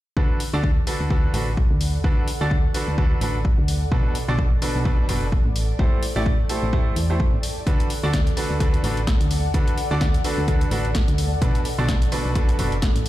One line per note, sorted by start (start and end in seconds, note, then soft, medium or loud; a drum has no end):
0.17 0.26 D2 medium
0.17 0.39 D3 medium
0.17 0.39 D4 medium
0.17 0.39 F#4 medium
0.17 13.09 A4 medium
0.17 0.39 A4 medium
0.17 0.39 B4 medium
0.17 kick loud
0.38 5.56 F#5 medium
0.38 open hi-hat loud
0.45 13.09 D5 medium
0.53 0.82 D2 medium
0.53 0.66 D3 medium
0.53 0.66 D4 medium
0.53 0.66 F#4 medium
0.53 0.66 A4 medium
0.53 0.66 D5 loud
0.64 kick loud
0.87 1.07 D3 medium
0.87 1.07 D4 medium
0.87 1.07 F#4 medium
0.87 1.07 A4 medium
0.87 1.07 B4 medium
0.87 open hi-hat medium
1.00 1.29 D2 medium
1.10 1.31 D3 medium
1.10 1.31 D4 medium
1.10 1.31 F#4 medium
1.10 1.31 A4 medium
1.10 1.31 B4 medium
1.10 kick loud
1.34 1.64 A1 medium
1.34 1.49 D3 medium
1.34 1.49 D4 medium
1.34 1.49 F#4 medium
1.34 1.49 A4 medium
1.34 1.49 B4 medium
1.34 open hi-hat medium
1.57 kick loud
1.71 1.99 D2 loud
1.81 open hi-hat medium
2.04 2.13 D2 medium
2.04 2.26 D3 medium
2.04 2.26 D4 medium
2.04 2.26 F#4 medium
2.04 2.26 A4 medium
2.04 2.26 B4 medium
2.04 kick loud
2.28 open hi-hat loud
2.41 2.69 D2 medium
2.41 2.53 D3 medium
2.41 2.53 D4 medium
2.41 2.53 F#4 medium
2.41 2.53 A4 medium
2.41 2.53 D5 loud
2.51 kick loud
2.74 2.95 D3 medium
2.74 2.95 D4 medium
2.74 2.95 F#4 medium
2.74 2.95 A4 medium
2.74 2.95 B4 medium
2.74 open hi-hat loud
2.88 3.16 D2 medium
2.98 3.18 D3 medium
2.98 3.18 D4 medium
2.98 3.18 F#4 medium
2.98 3.18 A4 medium
2.98 3.18 B4 medium
2.98 kick loud
3.21 3.51 A1 medium
3.21 3.37 D3 medium
3.21 3.36 D4 medium
3.21 3.36 F#4 medium
3.21 3.36 A4 medium
3.21 3.36 B4 medium
3.21 open hi-hat loud
3.45 kick loud
3.58 3.87 D2 loud
3.68 open hi-hat loud
3.92 4.01 B1 medium
3.92 4.14 B2 medium
3.92 4.14 D4 medium
3.92 4.14 F#4 medium
3.92 4.14 A4 medium
3.92 4.14 B4 medium
3.92 kick loud
4.15 open hi-hat loud
4.28 4.57 B1 medium
4.28 4.41 B2 medium
4.28 4.41 D4 medium
4.28 4.41 F#4 medium
4.28 4.41 A4 medium
4.28 4.41 D5 loud
4.38 kick loud
4.62 4.82 B2 medium
4.62 4.82 D4 medium
4.62 4.82 F#4 medium
4.62 4.82 A4 medium
4.62 4.82 B4 medium
4.62 open hi-hat loud
4.75 5.04 B1 medium
4.85 5.06 B2 medium
4.85 5.06 D4 medium
4.85 5.06 F#4 medium
4.85 5.06 A4 medium
4.85 5.06 B4 medium
4.85 kick loud
5.09 5.39 F#1 medium
5.09 5.24 B2 medium
5.09 5.24 D4 medium
5.09 5.24 F#4 medium
5.09 5.24 A4 medium
5.09 5.24 B4 medium
5.09 open hi-hat loud
5.32 kick loud
5.46 5.74 A1 loud
5.56 open hi-hat loud
5.79 5.88 A1 medium
5.79 6.01 A3 medium
5.79 6.01 E4 medium
5.79 6.01 G4 medium
5.79 6.01 A4 medium
5.79 6.01 C5 loud
5.79 kick loud
5.88 7.67 G5 medium
6.03 open hi-hat loud
6.16 6.44 A1 medium
6.16 6.28 A3 medium
6.16 6.28 E4 medium
6.16 6.28 G4 medium
6.16 6.28 A4 medium
6.16 6.28 D5 loud
6.26 kick loud
6.49 6.70 A3 medium
6.49 6.70 E4 medium
6.49 6.70 G4 medium
6.49 6.70 A4 medium
6.49 6.70 C5 medium
6.49 open hi-hat loud
6.63 6.91 A1 medium
6.73 6.93 A3 medium
6.73 6.93 E4 medium
6.73 6.93 G4 medium
6.73 6.93 A4 medium
6.73 6.93 C5 medium
6.73 kick loud
6.96 7.26 E2 medium
6.96 open hi-hat loud
7.10 7.22 A3 medium
7.10 7.22 E4 medium
7.10 7.22 G4 medium
7.10 7.22 A4 medium
7.10 7.22 C5 medium
7.20 kick loud
7.33 7.40 A1 medium
7.43 open hi-hat loud
7.67 7.76 D2 medium
7.67 7.89 D3 medium
7.67 7.89 D4 medium
7.67 7.89 F#4 medium
7.67 7.89 A4 medium
7.67 7.89 B4 medium
7.67 kick loud
7.67 closed hi-hat medium
7.80 closed hi-hat soft
7.90 13.06 F#5 medium
7.90 open hi-hat loud
8.03 8.32 D2 medium
8.03 8.16 D3 medium
8.03 8.16 D4 medium
8.03 8.16 F#4 medium
8.03 8.16 A4 medium
8.03 8.16 D5 loud
8.13 kick loud
8.13 snare loud
8.13 closed hi-hat medium
8.27 closed hi-hat soft
8.37 8.57 D3 medium
8.37 8.57 D4 medium
8.37 8.57 F#4 medium
8.37 8.57 A4 medium
8.37 8.57 B4 medium
8.37 open hi-hat loud
8.50 8.79 D2 medium
8.60 8.81 D3 medium
8.60 8.81 D4 medium
8.60 8.81 F#4 medium
8.60 8.81 A4 medium
8.60 8.81 B4 medium
8.60 kick loud
8.60 closed hi-hat medium
8.74 closed hi-hat soft
8.84 9.14 A1 medium
8.84 8.99 D3 medium
8.84 8.99 D4 medium
8.84 8.99 F#4 medium
8.84 8.99 A4 medium
8.84 8.99 B4 medium
8.84 open hi-hat loud
8.97 closed hi-hat soft
9.07 kick loud
9.07 snare loud
9.07 closed hi-hat medium
9.21 9.49 D2 loud
9.21 closed hi-hat soft
9.31 open hi-hat loud
9.54 9.63 D2 medium
9.54 9.76 D3 medium
9.54 9.76 D4 medium
9.54 9.76 F#4 medium
9.54 9.76 A4 medium
9.54 9.76 B4 loud
9.54 kick loud
9.54 closed hi-hat medium
9.68 closed hi-hat soft
9.78 open hi-hat medium
9.91 10.19 D2 medium
9.91 10.03 D3 medium
9.91 10.03 D4 medium
9.91 10.03 F#4 medium
9.91 10.03 A4 medium
9.91 10.03 D5 loud
10.01 kick loud
10.01 snare loud
10.01 closed hi-hat medium
10.14 closed hi-hat soft
10.24 10.45 D3 medium
10.24 10.45 D4 medium
10.24 10.45 F#4 medium
10.24 10.45 A4 medium
10.24 10.45 B4 medium
10.24 open hi-hat loud
10.38 10.66 D2 medium
10.48 10.68 D3 medium
10.48 10.68 D4 medium
10.48 10.68 F#4 medium
10.48 10.68 A4 medium
10.48 10.68 B4 medium
10.48 kick loud
10.48 closed hi-hat medium
10.61 closed hi-hat soft
10.71 11.01 A1 medium
10.71 10.87 D3 medium
10.71 10.87 D4 medium
10.71 10.87 F#4 medium
10.71 10.87 A4 medium
10.71 10.87 B4 medium
10.71 open hi-hat medium
10.85 closed hi-hat soft
10.95 kick loud
10.95 snare loud
10.95 closed hi-hat medium
11.08 11.37 D2 loud
11.08 closed hi-hat soft
11.18 open hi-hat loud
11.42 11.51 B1 medium
11.42 11.64 B2 medium
11.42 11.64 D4 medium
11.42 11.64 F#4 medium
11.42 11.64 A4 medium
11.42 11.64 B4 medium
11.42 kick loud
11.42 closed hi-hat medium
11.55 closed hi-hat soft
11.65 open hi-hat medium
11.78 12.07 B1 medium
11.78 11.91 B2 medium
11.78 11.91 D4 medium
11.78 11.91 F#4 medium
11.78 11.91 A4 medium
11.78 11.91 D5 loud
11.88 kick loud
11.88 snare loud
11.88 closed hi-hat medium
12.02 closed hi-hat medium
12.12 12.32 B2 medium
12.12 12.32 D4 medium
12.12 12.32 F#4 medium
12.12 12.32 A4 medium
12.12 12.32 B4 medium
12.12 open hi-hat medium
12.25 12.54 B1 medium
12.35 12.56 B2 medium
12.35 12.56 D4 medium
12.35 12.56 F#4 medium
12.35 12.56 A4 medium
12.35 12.56 B4 loud
12.35 kick loud
12.35 closed hi-hat medium
12.49 closed hi-hat soft
12.59 12.89 F#1 medium
12.59 12.74 B2 medium
12.59 12.74 D4 medium
12.59 12.74 F#4 medium
12.59 12.74 A4 medium
12.59 12.74 B4 medium
12.59 open hi-hat loud
12.72 closed hi-hat soft
12.82 kick loud
12.82 snare loud
12.82 closed hi-hat medium
12.96 13.09 A1 loud
12.96 closed hi-hat medium